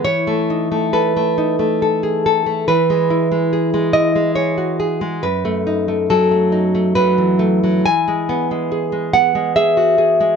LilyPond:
\new Staff \with { instrumentName = "Nylon-string guitar" } { \time 3/4 \key e \major \tempo 4 = 70 << { cis''4 b'4 r4 | b'4. dis''8 cis''4 | b'4 a'4 b'4 | gis''4. fis''8 e''4 | } \\ { e16 a16 dis'16 a16 a'16 a16 dis'16 a16 a'16 gis'16 a'16 a16 | e16 gis16 e'16 gis16 gis'16 gis16 e'16 gis16 gis'16 fis'16 gis'16 gis16 | fis,16 a16 dis'16 a16 fis16 a16 dis'16 a16 fis16 e16 a16 fis16 | e16 gis16 b16 gis16 gis'16 gis16 b16 gis16 gis'16 fis'16 gis'16 gis16 | } >> }